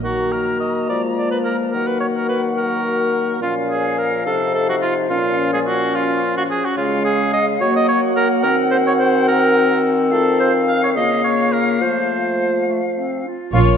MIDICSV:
0, 0, Header, 1, 10, 480
1, 0, Start_track
1, 0, Tempo, 562852
1, 32, Time_signature, 6, 3, 24, 8
1, 4351, Tempo, 556586
1, 8671, Tempo, 570342
1, 11753, End_track
2, 0, Start_track
2, 0, Title_t, "Flute"
2, 0, Program_c, 0, 73
2, 32, Note_on_c, 0, 82, 45
2, 1445, Note_off_c, 0, 82, 0
2, 1477, Note_on_c, 0, 78, 46
2, 2887, Note_off_c, 0, 78, 0
2, 2915, Note_on_c, 0, 77, 51
2, 5521, Note_off_c, 0, 77, 0
2, 5804, Note_on_c, 0, 77, 60
2, 6515, Note_on_c, 0, 78, 70
2, 6528, Note_off_c, 0, 77, 0
2, 8669, Note_on_c, 0, 77, 69
2, 8681, Note_off_c, 0, 78, 0
2, 11311, Note_off_c, 0, 77, 0
2, 11545, Note_on_c, 0, 77, 68
2, 11599, Note_off_c, 0, 77, 0
2, 11753, End_track
3, 0, Start_track
3, 0, Title_t, "Violin section"
3, 0, Program_c, 1, 48
3, 11551, Note_on_c, 1, 73, 60
3, 11753, Note_off_c, 1, 73, 0
3, 11753, End_track
4, 0, Start_track
4, 0, Title_t, "Cor anglais"
4, 0, Program_c, 2, 69
4, 36, Note_on_c, 2, 66, 59
4, 273, Note_on_c, 2, 70, 59
4, 285, Note_off_c, 2, 66, 0
4, 505, Note_off_c, 2, 70, 0
4, 510, Note_on_c, 2, 75, 52
4, 749, Note_off_c, 2, 75, 0
4, 761, Note_on_c, 2, 74, 60
4, 869, Note_off_c, 2, 74, 0
4, 1002, Note_on_c, 2, 74, 59
4, 1114, Note_off_c, 2, 74, 0
4, 1119, Note_on_c, 2, 71, 57
4, 1173, Note_off_c, 2, 71, 0
4, 1228, Note_on_c, 2, 70, 58
4, 1339, Note_off_c, 2, 70, 0
4, 1463, Note_on_c, 2, 70, 64
4, 1595, Note_on_c, 2, 71, 56
4, 1608, Note_off_c, 2, 70, 0
4, 1704, Note_off_c, 2, 71, 0
4, 1709, Note_on_c, 2, 73, 59
4, 1766, Note_off_c, 2, 73, 0
4, 1842, Note_on_c, 2, 70, 55
4, 1947, Note_off_c, 2, 70, 0
4, 1952, Note_on_c, 2, 71, 56
4, 2061, Note_off_c, 2, 71, 0
4, 2193, Note_on_c, 2, 70, 66
4, 2899, Note_off_c, 2, 70, 0
4, 2917, Note_on_c, 2, 65, 62
4, 3024, Note_off_c, 2, 65, 0
4, 3148, Note_on_c, 2, 68, 62
4, 3396, Note_on_c, 2, 70, 53
4, 3409, Note_off_c, 2, 68, 0
4, 3629, Note_off_c, 2, 70, 0
4, 3634, Note_on_c, 2, 69, 65
4, 3868, Note_off_c, 2, 69, 0
4, 3876, Note_on_c, 2, 69, 71
4, 3992, Note_off_c, 2, 69, 0
4, 4003, Note_on_c, 2, 66, 63
4, 4055, Note_off_c, 2, 66, 0
4, 4108, Note_on_c, 2, 65, 66
4, 4216, Note_off_c, 2, 65, 0
4, 4348, Note_on_c, 2, 65, 72
4, 4704, Note_off_c, 2, 65, 0
4, 4721, Note_on_c, 2, 68, 71
4, 4774, Note_off_c, 2, 68, 0
4, 4838, Note_on_c, 2, 66, 74
4, 5080, Note_on_c, 2, 65, 79
4, 5093, Note_off_c, 2, 66, 0
4, 5437, Note_off_c, 2, 65, 0
4, 5447, Note_on_c, 2, 66, 79
4, 5498, Note_off_c, 2, 66, 0
4, 5562, Note_on_c, 2, 68, 79
4, 5690, Note_on_c, 2, 66, 68
4, 5703, Note_off_c, 2, 68, 0
4, 5786, Note_off_c, 2, 66, 0
4, 5791, Note_on_c, 2, 65, 70
4, 6022, Note_off_c, 2, 65, 0
4, 6027, Note_on_c, 2, 68, 76
4, 6266, Note_off_c, 2, 68, 0
4, 6272, Note_on_c, 2, 75, 81
4, 6380, Note_off_c, 2, 75, 0
4, 6512, Note_on_c, 2, 73, 79
4, 6630, Note_off_c, 2, 73, 0
4, 6642, Note_on_c, 2, 75, 83
4, 6745, Note_off_c, 2, 75, 0
4, 6750, Note_on_c, 2, 73, 84
4, 6858, Note_off_c, 2, 73, 0
4, 6990, Note_on_c, 2, 70, 83
4, 7097, Note_off_c, 2, 70, 0
4, 7222, Note_on_c, 2, 70, 81
4, 7331, Note_off_c, 2, 70, 0
4, 7463, Note_on_c, 2, 72, 87
4, 7518, Note_off_c, 2, 72, 0
4, 7601, Note_on_c, 2, 73, 84
4, 7652, Note_off_c, 2, 73, 0
4, 7706, Note_on_c, 2, 72, 81
4, 7942, Note_off_c, 2, 72, 0
4, 7955, Note_on_c, 2, 70, 92
4, 8424, Note_off_c, 2, 70, 0
4, 8677, Note_on_c, 2, 69, 76
4, 8895, Note_off_c, 2, 69, 0
4, 8914, Note_on_c, 2, 72, 74
4, 9020, Note_off_c, 2, 72, 0
4, 9151, Note_on_c, 2, 77, 75
4, 9265, Note_off_c, 2, 77, 0
4, 9281, Note_on_c, 2, 73, 68
4, 9331, Note_off_c, 2, 73, 0
4, 9388, Note_on_c, 2, 75, 76
4, 9618, Note_off_c, 2, 75, 0
4, 9623, Note_on_c, 2, 73, 73
4, 9862, Note_on_c, 2, 70, 62
4, 9875, Note_off_c, 2, 73, 0
4, 10107, Note_on_c, 2, 72, 60
4, 10120, Note_off_c, 2, 70, 0
4, 10828, Note_off_c, 2, 72, 0
4, 11555, Note_on_c, 2, 65, 59
4, 11662, Note_off_c, 2, 65, 0
4, 11753, End_track
5, 0, Start_track
5, 0, Title_t, "Viola section"
5, 0, Program_c, 3, 48
5, 11551, Note_on_c, 3, 65, 58
5, 11753, Note_off_c, 3, 65, 0
5, 11753, End_track
6, 0, Start_track
6, 0, Title_t, "Clarinet"
6, 0, Program_c, 4, 71
6, 40, Note_on_c, 4, 66, 43
6, 761, Note_on_c, 4, 65, 37
6, 774, Note_off_c, 4, 66, 0
6, 1481, Note_off_c, 4, 65, 0
6, 1485, Note_on_c, 4, 66, 53
6, 2891, Note_off_c, 4, 66, 0
6, 2919, Note_on_c, 4, 61, 48
6, 3638, Note_on_c, 4, 63, 46
6, 3651, Note_off_c, 4, 61, 0
6, 4351, Note_off_c, 4, 63, 0
6, 4356, Note_on_c, 4, 61, 58
6, 6244, Note_off_c, 4, 61, 0
6, 6522, Note_on_c, 4, 58, 58
6, 7228, Note_on_c, 4, 60, 73
6, 7241, Note_off_c, 4, 58, 0
6, 9392, Note_on_c, 4, 58, 52
6, 9405, Note_off_c, 4, 60, 0
6, 10830, Note_off_c, 4, 58, 0
6, 10836, Note_on_c, 4, 57, 38
6, 10943, Note_off_c, 4, 57, 0
6, 11073, Note_on_c, 4, 60, 42
6, 11324, Note_on_c, 4, 65, 45
6, 11337, Note_off_c, 4, 60, 0
6, 11558, Note_off_c, 4, 65, 0
6, 11566, Note_on_c, 4, 61, 59
6, 11753, Note_off_c, 4, 61, 0
6, 11753, End_track
7, 0, Start_track
7, 0, Title_t, "French horn section"
7, 0, Program_c, 5, 60
7, 34, Note_on_c, 5, 58, 46
7, 38, Note_on_c, 5, 54, 44
7, 725, Note_off_c, 5, 54, 0
7, 764, Note_on_c, 5, 56, 36
7, 1472, Note_on_c, 5, 54, 47
7, 1483, Note_off_c, 5, 56, 0
7, 2883, Note_off_c, 5, 58, 0
7, 2884, Note_off_c, 5, 54, 0
7, 2907, Note_on_c, 5, 53, 52
7, 2911, Note_on_c, 5, 61, 44
7, 3628, Note_on_c, 5, 63, 50
7, 3631, Note_off_c, 5, 61, 0
7, 4333, Note_off_c, 5, 63, 0
7, 4341, Note_on_c, 5, 61, 58
7, 5646, Note_off_c, 5, 53, 0
7, 5793, Note_on_c, 5, 56, 59
7, 6499, Note_off_c, 5, 56, 0
7, 6509, Note_off_c, 5, 61, 0
7, 6510, Note_on_c, 5, 58, 51
7, 6511, Note_on_c, 5, 66, 61
7, 7227, Note_off_c, 5, 58, 0
7, 7227, Note_on_c, 5, 60, 70
7, 8657, Note_off_c, 5, 60, 0
7, 8667, Note_on_c, 5, 60, 62
7, 8669, Note_off_c, 5, 66, 0
7, 8672, Note_on_c, 5, 65, 59
7, 9349, Note_off_c, 5, 60, 0
7, 9352, Note_off_c, 5, 65, 0
7, 9386, Note_on_c, 5, 58, 46
7, 9387, Note_on_c, 5, 65, 49
7, 10088, Note_off_c, 5, 65, 0
7, 10098, Note_on_c, 5, 65, 51
7, 10099, Note_on_c, 5, 57, 49
7, 10104, Note_off_c, 5, 58, 0
7, 11285, Note_off_c, 5, 65, 0
7, 11310, Note_off_c, 5, 57, 0
7, 11552, Note_on_c, 5, 58, 55
7, 11554, Note_on_c, 5, 61, 54
7, 11753, Note_off_c, 5, 58, 0
7, 11753, Note_off_c, 5, 61, 0
7, 11753, End_track
8, 0, Start_track
8, 0, Title_t, "Bassoon"
8, 0, Program_c, 6, 70
8, 29, Note_on_c, 6, 51, 49
8, 758, Note_on_c, 6, 53, 50
8, 771, Note_off_c, 6, 51, 0
8, 1480, Note_on_c, 6, 51, 55
8, 1493, Note_off_c, 6, 53, 0
8, 2904, Note_off_c, 6, 51, 0
8, 2910, Note_on_c, 6, 46, 57
8, 3634, Note_on_c, 6, 48, 54
8, 3647, Note_off_c, 6, 46, 0
8, 4342, Note_off_c, 6, 48, 0
8, 4347, Note_on_c, 6, 46, 73
8, 5530, Note_off_c, 6, 46, 0
8, 5790, Note_on_c, 6, 49, 75
8, 6514, Note_on_c, 6, 54, 66
8, 6527, Note_off_c, 6, 49, 0
8, 7226, Note_on_c, 6, 51, 77
8, 7239, Note_off_c, 6, 54, 0
8, 9384, Note_on_c, 6, 49, 59
8, 9397, Note_off_c, 6, 51, 0
8, 10099, Note_off_c, 6, 49, 0
8, 10104, Note_on_c, 6, 53, 59
8, 11288, Note_off_c, 6, 53, 0
8, 11553, Note_on_c, 6, 58, 67
8, 11753, Note_off_c, 6, 58, 0
8, 11753, End_track
9, 0, Start_track
9, 0, Title_t, "Cello section"
9, 0, Program_c, 7, 48
9, 11548, Note_on_c, 7, 46, 64
9, 11753, Note_off_c, 7, 46, 0
9, 11753, End_track
10, 0, Start_track
10, 0, Title_t, "Double bass section"
10, 0, Program_c, 8, 48
10, 11548, Note_on_c, 8, 34, 73
10, 11753, Note_off_c, 8, 34, 0
10, 11753, End_track
0, 0, End_of_file